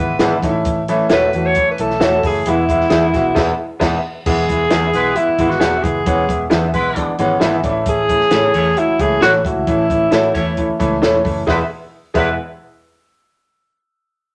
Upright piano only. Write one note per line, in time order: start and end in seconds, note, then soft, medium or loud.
0.00 0.14 E3 medium
0.00 0.14 G#3 medium
0.00 0.14 B3 medium
0.00 0.14 E4 medium
0.20 0.36 E3 loud
0.20 0.36 G#3 loud
0.20 0.36 B3 loud
0.20 0.36 E4 loud
0.43 0.79 E3 medium
0.43 0.79 A3 medium
0.43 0.79 C#4 medium
0.43 0.49 D#4 medium
0.49 0.82 E4 loud
0.89 1.04 E3 loud
0.89 1.04 A3 loud
0.89 1.04 C#4 loud
0.89 1.04 E4 loud
1.11 1.26 E3 medium
1.11 1.27 A3 medium
1.11 1.27 C#4 medium
1.11 1.27 F#4 medium
1.34 1.49 E3 medium
1.34 1.49 A3 medium
1.34 1.49 C#4 medium
1.34 1.50 F#4 medium
1.56 1.71 E3 medium
1.56 1.72 A3 medium
1.56 1.72 C#4 medium
1.56 1.72 E4 medium
1.79 1.94 E3 medium
1.79 1.94 A3 medium
1.79 1.94 C#4 medium
1.79 1.94 E4 medium
2.01 2.17 E3 medium
2.01 2.17 A3 medium
2.01 2.17 C#4 medium
2.01 2.17 F#4 loud
2.24 2.39 E3 medium
2.24 2.39 A3 medium
2.24 2.39 C#4 medium
2.24 2.39 E4 medium
2.46 2.62 E3 loud
2.46 2.62 G#3 medium
2.46 2.62 B3 loud
2.46 2.62 E4 loud
2.69 2.84 E3 medium
2.69 2.85 G#3 medium
2.69 2.85 B3 medium
2.69 2.85 E4 loud
2.91 3.07 E3 medium
2.91 3.07 G#3 medium
2.91 3.07 B3 medium
2.91 3.07 E4 medium
3.14 3.30 E3 medium
3.14 3.30 G#3 medium
3.14 3.30 B3 medium
3.14 3.30 F#4 loud
3.37 3.52 E3 medium
3.37 3.52 G#3 medium
3.37 3.52 B3 medium
3.37 3.52 E4 medium
3.81 3.96 E3 medium
3.81 3.97 G#3 medium
3.81 3.97 B3 loud
4.26 4.42 E3 loud
4.26 4.42 G#3 medium
4.26 4.42 B3 medium
4.26 4.42 E4 loud
4.49 4.65 E3 medium
4.49 4.65 G#3 medium
4.49 4.65 B3 medium
4.49 4.65 E4 medium
4.72 4.87 E3 medium
4.72 4.87 G#3 medium
4.72 4.88 B3 medium
4.72 4.88 E4 medium
4.94 5.10 E3 medium
4.94 5.10 G#3 medium
4.94 5.10 B3 medium
4.94 5.10 E4 medium
5.16 5.32 E3 medium
5.16 5.32 G#3 medium
5.16 5.32 B3 medium
5.16 5.32 E4 medium
5.39 5.55 E3 loud
5.39 5.55 G#3 loud
5.39 5.55 B3 medium
5.39 5.55 E4 loud
5.61 5.77 E3 loud
5.61 5.77 G#3 medium
5.61 5.77 B3 medium
5.61 5.77 E4 loud
5.84 5.99 E3 medium
5.84 5.99 G#3 medium
5.84 6.00 B3 medium
5.84 6.00 E4 medium
6.06 6.22 E3 loud
6.06 6.22 G#3 medium
6.06 6.22 B3 loud
6.06 6.22 C#4 loud
6.28 6.44 G#3 medium
6.28 6.44 B3 medium
6.28 6.44 E4 medium
6.51 6.67 E3 medium
6.51 6.67 G#3 medium
6.51 6.67 B3 medium
6.51 6.67 E4 loud
6.74 6.90 E3 medium
6.74 6.90 G#3 medium
6.74 6.90 B3 medium
6.74 6.90 E4 medium
6.96 7.12 E3 medium
6.96 7.12 G#3 medium
6.96 7.12 B3 medium
6.96 7.12 D4 medium
7.19 7.35 E3 loud
7.19 7.35 G#3 loud
7.19 7.35 B3 loud
7.19 7.35 C#4 loud
7.41 7.57 E3 loud
7.41 7.57 G#3 loud
7.41 7.57 B3 loud
7.41 7.57 E4 loud
7.63 8.00 E3 medium
7.63 8.00 A3 medium
7.63 8.00 C#4 medium
7.63 7.69 D4 medium
7.69 8.03 E4 loud
8.09 8.25 E3 medium
8.09 8.25 A3 medium
8.09 8.25 C#4 medium
8.09 8.25 E4 medium
8.32 8.48 E3 medium
8.32 8.48 A3 medium
8.32 8.48 C#4 medium
8.32 8.48 E4 medium
8.54 8.70 E3 medium
8.54 8.70 A3 medium
8.54 8.70 C#4 medium
8.54 8.70 E4 loud
8.77 8.93 E3 medium
8.77 8.93 A3 medium
8.77 8.93 C#4 medium
8.77 8.93 F#4 medium
9.00 9.15 E3 medium
9.00 9.15 A3 medium
9.00 9.16 C#4 medium
9.00 9.16 E4 loud
9.22 9.38 E3 loud
9.22 9.38 A3 medium
9.22 9.38 C#4 medium
9.22 9.38 E4 loud
9.45 9.60 E3 medium
9.45 9.60 A3 medium
9.45 9.61 C#4 medium
9.45 9.61 F#4 medium
9.67 9.83 E3 loud
9.67 9.83 A3 medium
9.67 9.83 C#4 medium
9.67 9.83 E4 loud
9.91 10.06 E3 medium
9.91 10.06 A3 medium
9.91 10.06 C#4 medium
9.91 10.06 E4 medium
10.12 10.28 E3 medium
10.12 10.28 A3 medium
10.12 10.28 C#4 medium
10.12 10.28 F#4 medium
10.35 10.51 E3 medium
10.35 10.51 A3 medium
10.35 10.51 C#4 medium
10.35 10.51 E4 loud
10.58 10.73 E3 medium
10.58 10.73 A3 medium
10.58 10.73 C#4 medium
10.58 10.74 E4 medium
10.79 10.95 E3 loud
10.79 10.95 A3 loud
10.79 10.95 C#4 loud
10.79 10.96 E4 loud
11.02 11.18 E3 loud
11.02 11.18 A3 loud
11.02 11.18 C#4 loud
11.02 11.18 E4 loud
11.24 11.40 E3 medium
11.24 11.40 A3 medium
11.24 11.40 C#4 medium
11.24 11.40 E4 loud
11.47 11.60 E3 medium
11.47 11.60 G#3 medium
11.47 11.60 B3 medium
11.47 11.60 E4 medium
12.15 12.36 E3 medium
12.15 12.36 G#3 medium
12.15 12.36 B3 medium
12.15 12.36 E4 medium